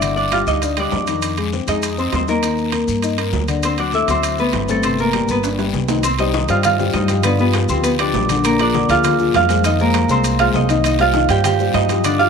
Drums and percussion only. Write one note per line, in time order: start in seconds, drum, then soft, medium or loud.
0.02 high conga soft
0.02 high timbale medium
0.02 long guiro medium
0.02 maracas medium
0.17 high conga soft
0.17 maracas soft
0.32 high conga medium
0.32 high timbale medium
0.32 low timbale medium
0.32 short guiro medium
0.32 maracas soft
0.47 high conga soft
0.47 short guiro medium
0.47 maracas medium
0.62 high conga soft
0.62 high timbale medium
0.62 long guiro medium
0.62 maracas medium
0.77 high conga soft
0.77 high timbale medium
0.77 maracas soft
0.92 high conga medium
0.92 low timbale medium
0.92 short guiro medium
0.92 maracas soft
1.07 high timbale medium
1.07 short guiro medium
1.07 maracas medium
1.22 high conga soft
1.22 high timbale medium
1.22 long guiro medium
1.22 maracas medium
1.37 high conga soft
1.37 high timbale medium
1.37 maracas soft
1.52 high conga medium
1.52 low timbale medium
1.52 short guiro medium
1.52 maracas soft
1.67 high conga soft
1.67 high timbale medium
1.67 short guiro medium
1.67 maracas medium
1.83 high conga soft
1.83 high timbale medium
1.83 long guiro medium
1.83 maracas medium
1.98 high conga soft
1.98 maracas soft
2.12 high conga medium
2.12 high timbale medium
2.12 low timbale medium
2.12 short guiro medium
2.12 maracas soft
2.28 high conga medium
2.28 short guiro medium
2.28 maracas medium
2.43 high timbale medium
2.43 long guiro medium
2.43 maracas medium
2.58 high conga soft
2.58 maracas soft
2.72 high conga medium
2.72 high timbale medium
2.72 low timbale medium
2.72 short guiro medium
2.72 maracas soft
2.88 high conga soft
2.88 short guiro medium
2.88 maracas medium
3.02 high conga soft
3.02 high timbale medium
3.02 long guiro medium
3.02 maracas medium
3.18 high conga soft
3.18 high timbale medium
3.18 maracas soft
3.33 high conga medium
3.33 low timbale medium
3.33 short guiro medium
3.33 maracas soft
3.48 high timbale medium
3.48 short guiro medium
3.48 maracas medium
3.63 high conga soft
3.63 high timbale medium
3.63 long guiro medium
3.63 maracas medium
3.78 high conga soft
3.78 high timbale medium
3.78 maracas soft
3.92 high conga medium
3.92 low timbale medium
3.92 short guiro medium
3.92 maracas soft
4.08 high timbale medium
4.08 short guiro medium
4.08 maracas medium
4.23 high conga soft
4.23 high timbale medium
4.23 long guiro medium
4.23 maracas medium
4.38 high conga soft
4.38 maracas soft
4.53 high conga medium
4.53 high timbale medium
4.53 low timbale medium
4.53 short guiro medium
4.53 maracas soft
4.68 high conga medium
4.68 short guiro medium
4.68 maracas medium
4.83 high conga soft
4.83 high timbale medium
4.83 long guiro medium
4.83 maracas medium
4.98 high conga soft
4.98 maracas soft
5.13 high conga medium
5.13 high timbale medium
5.13 low timbale medium
5.13 short guiro medium
5.13 maracas soft
5.28 short guiro medium
5.28 maracas medium
5.43 high conga soft
5.43 high timbale medium
5.43 long guiro medium
5.43 maracas medium
5.59 high conga soft
5.59 high timbale medium
5.59 maracas soft
5.74 high conga medium
5.74 short guiro medium
5.74 maracas soft
5.88 low timbale medium
5.88 short guiro medium
5.88 maracas medium
6.03 high timbale medium
6.03 long guiro medium
6.03 maracas medium
6.18 high conga soft
6.18 high timbale medium
6.18 maracas soft
6.34 high conga loud
6.34 low timbale medium
6.34 short guiro medium
6.34 maracas soft
6.48 high timbale medium
6.48 short guiro medium
6.48 maracas medium
6.63 high conga soft
6.63 low conga medium
6.63 high timbale medium
6.63 long guiro medium
6.63 maracas medium
6.80 high conga soft
6.80 low conga medium
6.80 maracas soft
6.93 high conga medium
6.93 high timbale medium
6.93 low timbale medium
6.93 short guiro medium
6.93 maracas soft
7.08 high conga medium
7.08 high timbale medium
7.08 short guiro medium
7.08 maracas medium
7.23 high conga soft
7.23 high timbale medium
7.23 long guiro medium
7.23 maracas medium
7.39 maracas soft
7.53 high conga medium
7.53 high timbale medium
7.53 low timbale medium
7.53 short guiro medium
7.53 maracas soft
7.69 high conga soft
7.69 short guiro medium
7.69 maracas medium
7.84 high conga soft
7.84 high timbale medium
7.84 long guiro medium
7.84 maracas medium
7.99 high conga soft
7.99 high timbale loud
7.99 maracas soft
8.14 high conga medium
8.14 low timbale medium
8.14 short guiro medium
8.14 maracas soft
8.29 high conga medium
8.29 high timbale medium
8.29 short guiro medium
8.29 maracas medium
8.44 high conga soft
8.44 high timbale medium
8.44 long guiro medium
8.44 maracas medium
8.59 high conga soft
8.59 high timbale medium
8.59 maracas soft
8.74 high conga medium
8.74 low timbale medium
8.74 short guiro medium
8.74 maracas soft
8.89 high conga soft
8.89 high timbale medium
8.89 short guiro medium
8.89 maracas medium
9.04 high conga soft
9.04 low conga medium
9.04 high timbale loud
9.04 long guiro medium
9.04 maracas medium
9.19 high conga soft
9.19 maracas soft
9.34 high conga medium
9.34 high timbale medium
9.34 low timbale medium
9.34 short guiro medium
9.34 maracas soft
9.49 high conga medium
9.49 high timbale medium
9.49 short guiro medium
9.49 maracas medium
9.64 high conga soft
9.64 high timbale medium
9.64 long guiro medium
9.64 maracas medium
9.79 maracas soft
9.94 high conga loud
9.94 high timbale medium
9.94 low timbale medium
9.94 short guiro medium
9.94 maracas soft
10.09 high conga soft
10.09 short guiro medium
10.09 maracas medium
10.24 high conga soft
10.24 high timbale medium
10.24 long guiro medium
10.24 maracas medium
10.39 high conga soft
10.39 high timbale medium
10.39 maracas soft
10.54 high conga medium
10.54 low timbale medium
10.54 short guiro medium
10.54 maracas soft
10.69 high conga medium
10.69 high timbale medium
10.69 short guiro medium
10.69 maracas medium
10.84 high conga soft
10.84 high timbale medium
10.84 long guiro medium
10.84 maracas medium
10.99 high conga soft
10.99 high timbale medium
10.99 maracas soft
11.14 high conga medium
11.14 low timbale medium
11.14 short guiro medium
11.14 maracas soft
11.29 high timbale medium
11.29 short guiro medium
11.29 maracas medium
11.44 high conga soft
11.44 low conga medium
11.44 high timbale medium
11.44 long guiro medium
11.44 maracas medium
11.59 high conga soft
11.59 maracas soft
11.74 high conga medium
11.74 high timbale medium
11.74 low timbale medium
11.74 short guiro medium
11.74 maracas soft
11.89 high conga medium
11.89 high timbale medium
11.89 short guiro medium
11.89 maracas medium
12.04 high timbale medium
12.04 long guiro medium
12.04 maracas medium
12.20 maracas soft